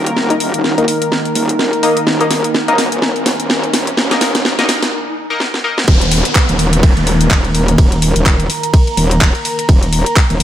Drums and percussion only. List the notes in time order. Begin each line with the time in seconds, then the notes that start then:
0.06 closed hi-hat
0.17 snare
0.30 closed hi-hat
0.40 open hi-hat
0.54 closed hi-hat
0.64 snare
0.78 closed hi-hat
0.88 open hi-hat
1.02 closed hi-hat
1.12 snare
1.25 closed hi-hat
1.35 open hi-hat
1.49 closed hi-hat
1.59 snare
1.73 closed hi-hat
1.83 open hi-hat
1.97 closed hi-hat
2.07 snare
2.21 closed hi-hat
2.31 snare, open hi-hat
2.44 closed hi-hat
2.54 snare
2.68 closed hi-hat
2.78 snare, open hi-hat
2.92 closed hi-hat
3.02 snare
3.16 closed hi-hat
3.26 snare, open hi-hat
3.40 closed hi-hat
3.50 snare
3.64 closed hi-hat
3.74 snare, open hi-hat
3.87 closed hi-hat
3.97 snare
4.11 snare, closed hi-hat
4.21 snare, open hi-hat
4.35 snare, closed hi-hat
4.45 snare
4.59 snare, closed hi-hat
4.69 snare, open hi-hat
4.83 snare, closed hi-hat
5.40 snare
5.54 snare
5.78 snare
5.88 kick, ride
6.01 closed hi-hat
6.12 open hi-hat
6.25 closed hi-hat
6.35 kick, clap, ride
6.49 closed hi-hat
6.59 open hi-hat
6.73 closed hi-hat
6.83 kick, ride
6.97 closed hi-hat
7.07 open hi-hat
7.21 closed hi-hat
7.31 kick, clap, ride
7.45 closed hi-hat
7.55 open hi-hat
7.68 closed hi-hat
7.78 kick, ride
7.92 closed hi-hat
8.02 open hi-hat
8.16 closed hi-hat
8.26 kick, clap, ride
8.40 closed hi-hat
8.50 open hi-hat
8.63 closed hi-hat
8.74 kick, ride
8.87 closed hi-hat
8.97 open hi-hat
9.11 closed hi-hat
9.21 kick, clap, ride
9.35 closed hi-hat
9.45 open hi-hat
9.59 closed hi-hat
9.69 kick, ride
9.83 closed hi-hat
9.93 open hi-hat
10.06 closed hi-hat
10.16 kick, clap, ride
10.30 closed hi-hat